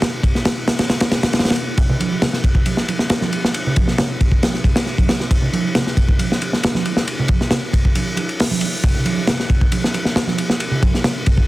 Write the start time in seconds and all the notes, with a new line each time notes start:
0.02 snare, ride
0.23 kick, ride
0.35 snare
0.45 snare, ride
0.68 snare, ride
0.79 snare, ride
0.90 snare, ride
1.00 snare, ride
1.12 snare, ride
1.23 snare, ride
1.33 snare, ride
1.39 snare, ride
1.45 snare, ride
1.50 snare, ride
1.56 ride
1.78 kick, ride
1.89 low conga
2.00 ride, high conga
2.12 muted conga
2.22 snare, ride, low conga
2.33 snare
2.44 kick, ride
2.55 kick
2.66 ride, high conga
2.77 snare
2.88 ride, muted conga
2.99 snare, muted conga
3.10 snare, ride
3.21 snare, high conga
3.33 ride
3.45 snare
3.54 ride
3.67 low conga
3.76 kick, ride, high conga
3.88 snare, muted conga
3.98 snare, ride, low conga
4.21 kick, ride
4.32 kick
4.43 snare, ride, high conga
4.54 snare
4.64 kick, ride, muted conga
4.76 snare, ride
4.86 snare
4.98 kick, ride, high conga
5.08 snare, ride, muted conga
5.20 snare
5.31 kick, ride
5.42 low conga
5.53 ride, high conga
5.64 muted conga
5.75 snare, ride, low conga
5.87 snare
5.97 kick, ride
6.09 kick
6.19 ride, high conga
6.32 snare
6.42 ride, muted conga
6.52 snare, muted conga
6.63 snare, ride
6.74 snare, high conga
6.85 ride
6.97 snare
7.08 ride
7.19 low conga
7.28 kick, ride, high conga
7.41 snare, muted conga
7.51 snare, ride, low conga
7.73 kick, ride
7.85 kick
7.95 ride, high conga
8.16 ride, muted conga
8.29 ride
8.40 snare, open hi-hat
8.51 high conga
8.61 ride, muted conga
8.84 kick, ride
8.94 low conga
9.05 ride, high conga
9.17 muted conga
9.27 snare, ride, low conga
9.40 snare
9.50 kick, ride
9.61 kick
9.72 ride, high conga
9.84 snare
9.94 ride, muted conga
10.05 snare, muted conga
10.16 snare, ride
10.27 snare, high conga
10.38 ride
10.50 snare
10.60 ride
10.71 low conga
10.82 kick, ride, high conga
10.93 snare, muted conga
11.04 snare, ride, low conga
11.26 kick, ride
11.38 kick